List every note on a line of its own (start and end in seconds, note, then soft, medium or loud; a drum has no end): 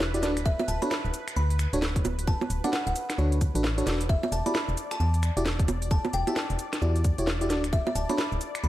0.00 0.24 E1 medium
0.00 4.10 B4 medium
0.00 snare loud
0.00 cabasa soft
0.14 0.22 E4 medium
0.14 0.22 F#4 medium
0.14 0.22 G4 medium
0.14 0.22 D5 medium
0.14 closed hi-hat medium
0.14 cabasa soft
0.23 0.53 D1 medium
0.23 0.37 D4 medium
0.23 0.37 F#4 medium
0.23 0.37 A4 medium
0.23 0.37 D5 loud
0.23 snare medium
0.23 closed hi-hat loud
0.23 cabasa medium
0.37 finger snap soft
0.37 closed hi-hat medium
0.37 cabasa soft
0.46 0.55 E5 medium
0.46 kick loud
0.46 cabasa soft
0.59 0.65 E5 medium
0.59 high bongo medium
0.59 cabasa soft
0.68 0.78 D1 loud
0.68 0.79 A5 medium
0.68 closed hi-hat loud
0.68 cabasa medium
0.82 0.92 D4 medium
0.82 0.92 F#4 medium
0.82 0.92 A4 medium
0.82 0.92 C#5 medium
0.82 0.88 B5 medium
0.82 closed hi-hat medium
0.82 high bongo medium
0.82 cabasa soft
0.91 1.00 B5 medium
0.91 finger snap medium
0.91 snare loud
0.91 cabasa soft
1.05 1.11 D1 medium
1.05 cabasa soft
1.14 closed hi-hat loud
1.14 cabasa medium
1.28 finger snap medium
1.28 closed hi-hat medium
1.28 cabasa soft
1.37 1.67 D2 medium
1.37 1.55 B5 medium
1.37 cabasa soft
1.50 closed hi-hat soft
1.50 cabasa soft
1.59 finger snap medium
1.59 closed hi-hat loud
1.59 cabasa medium
1.73 2.01 D1 medium
1.73 1.79 D4 medium
1.73 1.79 F#4 medium
1.73 1.79 A4 medium
1.73 1.79 C#5 loud
1.73 closed hi-hat medium
1.73 cabasa soft
1.82 snare loud
1.82 cabasa soft
1.96 kick loud
1.96 closed hi-hat medium
1.96 cabasa soft
2.05 2.35 D1 medium
2.05 closed hi-hat loud
2.05 high bongo medium
2.05 cabasa medium
2.19 closed hi-hat medium
2.19 cabasa soft
2.27 2.46 A5 medium
2.27 kick loud
2.27 cabasa soft
2.41 high bongo medium
2.41 cabasa soft
2.50 2.60 D1 loud
2.50 closed hi-hat loud
2.50 cabasa medium
2.64 2.70 D4 medium
2.64 2.70 F#4 medium
2.64 2.70 A4 medium
2.64 2.70 D5 loud
2.64 2.71 F#5 loud
2.64 closed hi-hat medium
2.64 high bongo medium
2.64 cabasa soft
2.73 2.82 F#5 medium
2.73 finger snap medium
2.73 snare loud
2.73 cabasa soft
2.87 2.93 D1 medium
2.87 2.92 F#5 medium
2.87 closed hi-hat soft
2.87 cabasa soft
2.96 closed hi-hat loud
2.96 cabasa medium
3.10 finger snap medium
3.10 snare medium
3.10 closed hi-hat medium
3.10 cabasa soft
3.18 3.49 D2 medium
3.18 3.39 D4 medium
3.18 3.39 F#4 medium
3.18 3.39 A4 medium
3.18 3.39 C#5 medium
3.18 cabasa soft
3.32 closed hi-hat soft
3.32 cabasa soft
3.41 kick loud
3.41 closed hi-hat loud
3.41 cabasa medium
3.55 3.82 A1 medium
3.55 3.64 D4 medium
3.55 3.64 F#4 medium
3.55 3.64 A4 medium
3.55 3.64 B4 loud
3.55 closed hi-hat medium
3.55 cabasa soft
3.64 snare loud
3.64 cabasa soft
3.78 3.85 D4 medium
3.78 3.85 F#4 medium
3.78 3.85 A4 medium
3.78 3.85 C#5 medium
3.78 closed hi-hat medium
3.78 cabasa soft
3.86 4.17 E1 loud
3.86 4.01 D4 medium
3.86 4.01 F#4 medium
3.86 4.01 A4 medium
3.86 4.01 D5 medium
3.86 snare loud
3.86 closed hi-hat loud
3.86 cabasa medium
4.01 closed hi-hat medium
4.01 cabasa soft
4.09 8.68 D5 medium
4.09 4.18 E5 medium
4.09 kick loud
4.09 cabasa soft
4.23 4.29 E5 medium
4.23 high bongo medium
4.23 cabasa soft
4.32 4.42 E1 loud
4.32 4.43 A5 medium
4.32 closed hi-hat loud
4.32 cabasa medium
4.46 4.55 E4 medium
4.46 4.55 F#4 medium
4.46 4.55 G4 medium
4.46 4.55 D5 medium
4.46 4.52 B5 medium
4.46 closed hi-hat medium
4.46 high bongo medium
4.46 cabasa soft
4.55 4.64 B5 medium
4.55 finger snap medium
4.55 snare loud
4.55 cabasa soft
4.69 4.75 E1 loud
4.69 cabasa soft
4.77 closed hi-hat loud
4.77 cabasa medium
4.91 4.97 A5 medium
4.91 finger snap medium
4.91 closed hi-hat medium
4.91 cabasa soft
5.00 5.30 E2 medium
5.00 5.09 A5 medium
5.00 cabasa soft
5.14 closed hi-hat soft
5.14 cabasa soft
5.23 finger snap medium
5.23 closed hi-hat loud
5.23 cabasa medium
5.37 5.64 E1 medium
5.37 5.42 E4 medium
5.37 5.42 F#4 medium
5.37 5.42 G4 medium
5.37 5.42 D5 loud
5.37 closed hi-hat medium
5.37 cabasa soft
5.46 snare loud
5.46 cabasa soft
5.59 kick loud
5.59 closed hi-hat medium
5.59 cabasa soft
5.68 5.99 E1 medium
5.68 closed hi-hat loud
5.68 high bongo medium
5.68 cabasa medium
5.82 closed hi-hat medium
5.82 cabasa soft
5.91 6.09 A5 medium
5.91 kick loud
5.91 cabasa soft
6.05 high bongo medium
6.05 cabasa soft
6.13 6.24 E1 loud
6.13 6.25 G5 medium
6.13 closed hi-hat loud
6.13 cabasa medium
6.27 6.33 E4 medium
6.27 6.33 F#4 medium
6.27 6.33 G4 medium
6.27 6.33 E5 loud
6.27 6.33 A5 medium
6.27 closed hi-hat medium
6.27 high bongo medium
6.27 cabasa soft
6.36 6.45 A5 medium
6.36 finger snap medium
6.36 snare loud
6.36 cabasa soft
6.50 6.57 E1 loud
6.50 closed hi-hat soft
6.50 cabasa soft
6.59 closed hi-hat loud
6.59 cabasa medium
6.73 finger snap medium
6.73 snare medium
6.73 closed hi-hat medium
6.73 cabasa soft
6.82 7.12 E2 medium
6.82 7.03 E4 medium
6.82 7.03 F#4 medium
6.82 7.03 G4 medium
6.82 7.03 D5 medium
6.82 cabasa soft
6.96 closed hi-hat soft
6.96 cabasa soft
7.04 kick loud
7.04 closed hi-hat loud
7.04 cabasa medium
7.18 7.51 E1 medium
7.18 7.28 E4 medium
7.18 7.28 F#4 medium
7.18 7.28 G4 medium
7.18 7.28 C#5 loud
7.18 closed hi-hat medium
7.18 cabasa soft
7.27 snare loud
7.27 cabasa soft
7.41 7.49 E4 medium
7.41 7.49 F#4 medium
7.41 7.49 G4 medium
7.41 7.49 D5 medium
7.41 closed hi-hat medium
7.41 cabasa soft
7.50 7.80 D1 medium
7.50 7.64 D4 medium
7.50 7.64 F#4 medium
7.50 7.64 A4 medium
7.50 7.64 D5 medium
7.50 snare medium
7.50 closed hi-hat loud
7.50 cabasa medium
7.64 finger snap soft
7.64 closed hi-hat medium
7.64 cabasa soft
7.73 7.82 E5 medium
7.73 kick loud
7.73 cabasa soft
7.87 7.92 E5 medium
7.87 high bongo medium
7.87 cabasa soft
7.95 8.05 D1 loud
7.95 8.07 A5 medium
7.95 closed hi-hat loud
7.95 cabasa medium
8.09 8.19 D4 medium
8.09 8.19 F#4 medium
8.09 8.19 A4 medium
8.09 8.19 C#5 medium
8.09 8.15 B5 medium
8.09 closed hi-hat medium
8.09 high bongo medium
8.09 cabasa soft
8.18 8.27 B5 medium
8.18 finger snap medium
8.18 snare loud
8.18 cabasa soft
8.32 8.38 D1 loud
8.32 cabasa soft
8.41 closed hi-hat loud
8.41 cabasa medium
8.55 finger snap medium
8.55 closed hi-hat medium
8.55 cabasa soft
8.64 8.68 D2 medium
8.64 8.68 B5 medium
8.64 cabasa soft